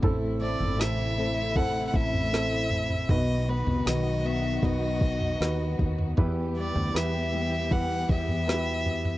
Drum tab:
SD |----o-------o---|----o-------o---|----o-------o---|
FT |o--o----o--o--oo|o--o----o--o--oo|o--o----o--o--oo|
BD |o-------o-o-----|o-------o-o---o-|o-------o-o-----|